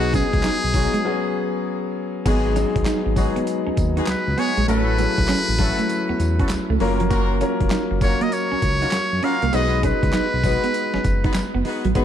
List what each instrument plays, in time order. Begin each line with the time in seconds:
Already playing: analog synth bass B1, grand piano F#3 B3 D#4 G#4, horn section G#3 B3 D#4 F#4 G#4, muted trumpet F#4
0.13 grand piano F#3 B3 D#4 G#4, clean electric guitar C#4, muted trumpet G#4, kick, closed hi-hat, tambourine
0.33 analog synth bass C#2, muted clean electric guitar stroke, kick, closed hi-hat
0.43 analog synth bass B1, clean electric guitar D#4, snare, clap, closed hi-hat, tambourine
0.64 analog synth bass B1
0.74 grand piano F#3 B3 D#4 G#4, horn section G#3 B3 D#4 F#4 G#4, muted clean electric guitar stroke, kick, open hi-hat, tambourine
0.94 clean electric guitar G#3, closed hi-hat
1.05 grand piano F#3 B3 C#4 G#4
2.25 analog synth bass G#1, grand piano F#3 G#3 B3 D#4 G#4, horn section G#3 B3 D#4 F#4 G#4, clean electric guitar B3, kick, closed hi-hat, crash, tambourine
2.56 grand piano F#3 G#3 B3 D#4 G#4, clean electric guitar C#4, closed hi-hat, tambourine
2.76 analog synth bass B1, muted clean electric guitar stroke, kick, closed hi-hat
2.85 analog synth bass G#1, clean electric guitar D#4, snare, clap, closed hi-hat, tambourine
3.06 analog synth bass G#1, muted clean electric guitar stroke
3.16 grand piano F#3 G#3 B3 D#4 G#4, horn section G#3 B3 D#4 F#4 G#4, kick, open hi-hat, tambourine
3.36 clean electric guitar B3, closed hi-hat
3.47 closed hi-hat, tambourine
3.67 analog synth bass D#2, clean electric guitar C#4
3.77 analog synth bass D#2, muted clean electric guitar stroke, kick, closed hi-hat, tambourine
3.97 horn section G#3 B3 D#4 F#4 G#4, clean electric guitar D#4, closed hi-hat
4.07 analog synth bass C#2, muted trumpet B4, muted clean electric guitar stroke, snare, clap, closed hi-hat, tambourine
4.27 analog synth bass C#2
4.37 horn section G#3 B3 D#4 F#4 G#4, clean electric guitar B3, muted trumpet C#5, open hi-hat
4.57 analog synth bass A#1, clean electric guitar G#3, closed hi-hat
4.68 analog synth bass A1, grand piano F#3 A3 C#4 E4 A4, clean electric guitar A3, horn section A3 C#4 E4 F#4 A4, muted trumpet B4, closed hi-hat, tambourine
4.98 grand piano F#3 A3 C#4 E4 G#4, clean electric guitar B3, closed hi-hat, tambourine
5.06 grand piano A4
5.18 analog synth bass B1, muted clean electric guitar stroke, kick, closed hi-hat
5.28 analog synth bass A1, clean electric guitar C#4, snare, clap, closed hi-hat, tambourine
5.49 analog synth bass A1
5.58 grand piano F#3 A3 C#4 E4 A4, horn section A3 C#4 E4 F#4 A4, muted clean electric guitar stroke, kick, open hi-hat, tambourine
5.79 clean electric guitar A3, closed hi-hat
5.89 closed hi-hat, tambourine
6.09 analog synth bass E2, clean electric guitar B3
6.20 analog synth bass E2, muted clean electric guitar stroke, closed hi-hat, tambourine
6.39 horn section A3 C#4 E4 F#4 A4, clean electric guitar C#4, kick, closed hi-hat
6.49 analog synth bass C#2, snare, clap, closed hi-hat, tambourine
6.70 analog synth bass C#2, clean electric guitar A3
6.80 analog synth bass F#1, grand piano F#3 A#3 C#4 F4 A#4, horn section A#3 C#4 F4 F#4 A#4, muted clean electric guitar stroke, open hi-hat
7.00 clean electric guitar F3, closed hi-hat
7.10 clean electric guitar A#3, horn section A#3 C#4 F4 F#4 A#4, kick, closed hi-hat, tambourine
7.41 grand piano F#3 A#3 C#4 F4 A#4, clean electric guitar C#4, closed hi-hat, tambourine
7.60 analog synth bass F1, muted clean electric guitar stroke, kick, closed hi-hat
7.70 analog synth bass F#1, clean electric guitar D#4, snare, clap, closed hi-hat, tambourine
7.91 analog synth bass F#1, muted clean electric guitar stroke
8.01 grand piano F#3 A#3 C#4 F4 A#4, horn section A#3 C#4 F4 F#4 A#4, muted trumpet C#5, kick, open hi-hat, tambourine
8.21 clean electric guitar A#3, muted trumpet D#5, closed hi-hat
8.32 muted trumpet C#5, closed hi-hat, tambourine
8.52 analog synth bass C#2, clean electric guitar C#4
8.62 analog synth bass C#2, muted clean electric guitar stroke, kick, closed hi-hat, tambourine
8.81 horn section A#3 C#4 F4 F#4 A#4, clean electric guitar D#4, closed hi-hat
8.91 analog synth bass F#2, muted clean electric guitar stroke, snare, clap, closed hi-hat, tambourine
9.12 analog synth bass F#2
9.22 horn section A#3 C#4 F4 F#4 A#4, clean electric guitar C#4, muted trumpet F5, open hi-hat
9.42 analog synth bass C2, clean electric guitar A#3, closed hi-hat
9.53 analog synth bass B1, grand piano G#3 B3 D#4 F#4 B4, clean electric guitar B3, horn section B3 D#4 F#4 G#4 B4, muted trumpet D#5, closed hi-hat, tambourine
9.83 grand piano G#3 B3 D#4 F#4 B4, clean electric guitar C#4, muted trumpet B4, kick, closed hi-hat, tambourine
10.03 analog synth bass C#2, muted clean electric guitar stroke, kick, closed hi-hat
10.13 analog synth bass B1, clean electric guitar D#4, snare, clap, closed hi-hat, tambourine
10.33 analog synth bass B1
10.43 grand piano G#3 B3 D#4 F#4 B4, horn section B3 D#4 F#4 G#4 B4, muted clean electric guitar stroke, kick, open hi-hat, tambourine
10.64 clean electric guitar B3, closed hi-hat
10.74 closed hi-hat, tambourine
10.94 analog synth bass F#1, clean electric guitar C#4, snare
11.04 analog synth bass F#1, muted clean electric guitar stroke, kick, closed hi-hat, tambourine
11.24 horn section B3 D#4 F#4 G#4 B4, clean electric guitar D#4, kick, closed hi-hat
11.34 analog synth bass F#1, snare, clap, closed hi-hat, tambourine
11.54 analog synth bass F#1, clean electric guitar B3
11.65 horn section B3 D#4 F#4 G#4 B4, muted clean electric guitar stroke, open hi-hat
11.85 analog synth bass A1, clean electric guitar F#3, closed hi-hat
11.95 analog synth bass G#1, grand piano G#3 B3 D#4 F#4 B4, clean electric guitar B3, horn section B3 D#4 F#4 G#4 B4, kick, closed hi-hat, tambourine